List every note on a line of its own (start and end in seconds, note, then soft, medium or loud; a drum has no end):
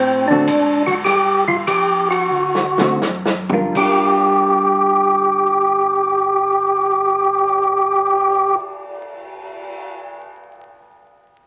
0.00 0.46 A2 medium
0.00 0.26 C4 medium
0.28 0.46 D3 medium
0.28 0.47 A3 medium
0.28 0.47 C4 medium
0.28 0.83 D4 medium
0.32 0.47 F#4 medium
0.47 1.04 G#2 medium
0.47 kick soft
0.47 hi-hat pedal medium
0.47 ride medium
0.86 0.95 F#4 medium
0.86 kick soft
0.86 ride soft
1.05 1.66 G2 medium
1.05 1.44 G4 loud
1.05 kick soft
1.05 snare soft
1.05 ride medium
1.48 1.57 F4 medium
1.48 kick medium
1.67 2.30 F2 medium
1.67 2.09 G4 medium
1.67 kick soft
1.67 hi-hat pedal medium
1.67 ride medium
2.11 2.97 F#4 medium
2.11 ride soft
2.31 2.98 D2 medium
2.55 snare soft
2.78 2.99 D3 medium
2.78 3.00 A3 medium
2.78 3.00 C4 medium
2.78 3.00 F#4 medium
2.78 snare medium
3.00 3.72 F#2 medium
3.00 snare medium
3.00 hi-hat pedal medium
3.25 snare medium
3.49 3.71 G3 medium
3.49 3.76 D4 medium
3.49 floor tom medium
3.54 3.80 F4 medium
3.54 3.83 A#4 medium
3.73 8.54 G1 medium
3.73 8.55 G3 medium
3.73 kick medium
3.73 crash medium
3.77 8.60 D4 medium
3.77 8.63 F4 medium
3.77 8.56 G4 medium
3.85 8.67 A#4 medium
4.28 cymbal swell soft